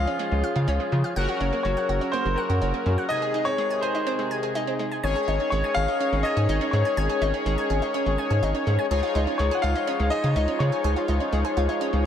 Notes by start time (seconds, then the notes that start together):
Already playing: G#2 C#3 F3 C#4 F4 G#4 F5
0.07 C#4
0.19 G#3
0.32 C#2 F3
0.44 F5
0.56 C#3 F4
0.68 C#2 C#4
0.80 G#3
0.92 C#3 F3
1.04 F5
1.16 F#1 A#2 F#3 C#4 F#4 A#4 F#5
1.29 F#4
1.41 F#1 C#4
1.53 A#3
1.63 F#1 F#3 C#5
1.77 F#5
1.89 F#1 F#4
2.01 C#4
2.12 A#3 C5
2.25 F#1 F#3
2.36 A#4 F#5
2.49 F#2 F#4
2.62 F#1 C#4
2.74 A#3
2.86 F#2 F#3
2.98 F#5
3.09 C3 D#3 G#3 D#4 G#4 D#5 G#5
3.22 G#4
3.34 D#4
3.45 C4 C#5
3.58 G#3
3.71 G#5
3.81 G#4 C5
3.95 D#4
4.07 C4
4.19 G#3
4.31 G#5
4.43 G#4
4.55 D#4
4.67 C4
4.79 G#3
4.91 G#5
5.03 G#1 C#3 D#3 G#3 C#4 D#4 G#4 C#5 G#5
5.16 G#4
5.28 G#1 D#4
5.40 C#4
5.50 G#1 G#3 C#5
5.64 G#5
5.74 G#1 G#4 F5
5.88 D#4
6.00 C#4
6.12 G#1 G#3
6.23 D#5 G#5
6.37 G#2 G#4
6.49 G#1 D#4
6.61 C#4 D#5
6.71 G#2 G#3 C#5
6.85 G#5
6.97 G#1 C#4 G#5
7.10 G#4
7.21 G#1 D#4
7.34 C#4
7.46 G#1 G#3
7.58 G#5
7.70 G#1 G#4
7.82 D#4
7.94 C#4
8.06 G#1 G#3
8.18 G#5
8.30 G#2 G#4
8.43 G#1 D#4
8.55 C#4
8.67 G#2 G#3
8.79 G#5
8.91 C#2 F3 D#4 F4 G#4 C#5
9.03 F4
9.15 C#2 D#4
9.27 C#4
9.38 C#2 G#3 C#5
9.51 G#4 F#5
9.62 C#2 F4 F5
9.75 D#4
9.87 C#4
10.00 C#2 G#3 F5
10.10 G#4 D#5
10.24 C#3 F4
10.36 C#2 D#4
10.48 C#4
10.59 C#3 G#3 C#5
10.72 G#4
10.84 C#2 G#4
10.96 F4
11.08 C#2 D#4
11.20 C#4
11.32 C#2 G#3
11.45 G#4
11.57 C#2 F4
11.69 D#4
11.81 C#4
11.93 C#2 G#3